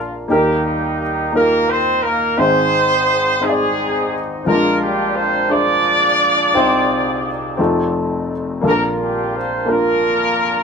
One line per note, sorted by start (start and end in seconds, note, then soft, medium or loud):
0.00 0.25 A#1 soft
0.00 0.25 A#2 soft
0.00 0.28 A#3 medium
0.00 0.12 D4 medium
0.00 0.31 D4 soft
0.00 0.12 F4 medium
0.00 0.30 F4 medium
0.00 0.31 A#4 medium
0.28 2.34 D#2 soft
0.28 2.34 D#3 soft
0.28 0.61 G3 medium
0.28 1.01 A#3 medium
0.28 1.30 A#3 medium
0.28 1.29 D#4 medium
0.28 1.01 D#4 medium
0.28 0.61 G4 medium
0.28 1.02 G4 medium
0.28 1.02 A#4 medium
0.64 0.96 G3 medium
0.64 0.96 G4 medium
0.99 1.31 G3 medium
0.99 1.31 G4 medium
1.32 2.05 A#3 medium
1.32 1.69 A#3 medium
1.32 2.06 D#4 soft
1.32 1.40 F4 soft
1.32 1.69 A#4 medium
1.32 2.07 A#4 medium
1.41 2.09 G4 medium
1.69 2.03 C4 medium
1.69 2.03 C5 medium
2.03 2.38 A#3 medium
2.03 2.38 A#4 medium
2.37 4.42 G#1 medium
2.37 4.42 G#2 medium
2.37 3.41 C4 medium
2.37 3.10 C4 medium
2.37 3.38 D#4 medium
2.37 3.10 D#4 medium
2.37 3.38 G#4 medium
2.37 3.10 G#4 medium
2.37 3.41 C5 medium
2.37 3.11 C5 medium
3.40 4.20 G#3 medium
3.40 4.13 C4 medium
3.40 4.14 D#4 medium
3.40 4.43 D#4 medium
3.40 4.14 G#4 medium
3.40 4.20 G#4 medium
3.40 3.49 C5 medium
3.44 4.43 C4 medium
3.49 4.18 D5 medium
4.44 6.51 A#1 soft
4.44 6.51 A#2 soft
4.44 5.19 G#3 medium
4.44 4.79 A#3 medium
4.44 4.52 C4 soft
4.44 5.46 D4 medium
4.44 5.18 F4 medium
4.44 5.47 F4 medium
4.44 4.79 A#4 medium
4.44 5.19 A#4 medium
4.51 5.21 D4 medium
4.81 5.13 G3 medium
4.81 5.13 G4 medium
5.15 5.50 C4 medium
5.15 5.50 C5 medium
5.49 6.22 D4 medium
5.49 7.94 D4 medium
5.49 6.22 F4 soft
5.49 7.90 F4 medium
5.49 6.22 G#4 soft
5.49 7.90 G#4 medium
5.49 6.23 C5 medium
5.49 7.94 D5 loud
6.54 7.55 C2 medium
6.54 7.55 C3 medium
6.54 7.27 C4 medium
6.54 7.27 D#4 medium
6.54 7.28 C5 medium
6.54 7.27 G5 medium
7.57 8.59 F1 medium
7.57 8.59 F2 medium
7.57 8.32 A3 medium
7.57 8.30 C4 medium
7.57 8.31 D#4 medium
7.57 8.32 F4 medium
8.61 10.63 A#1 medium
8.61 10.63 A#2 soft
8.61 9.35 A#3 medium
8.61 9.35 D4 medium
8.61 9.36 F4 medium
8.61 8.70 A4 medium
8.66 8.82 A#3 medium
8.66 9.65 D4 medium
8.66 9.65 F4 medium
8.66 8.82 A#4 medium
8.71 9.40 A#4 medium
9.01 9.32 G3 medium
9.01 9.32 G4 medium
9.34 9.68 C4 medium
9.34 9.68 C5 medium
9.66 10.39 A#3 medium
9.66 10.40 D4 soft
9.66 10.63 D4 medium
9.66 10.40 F4 soft
9.66 10.63 F4 medium
9.66 10.41 A#4 medium
9.70 10.63 A#3 medium
9.70 10.63 A#4 medium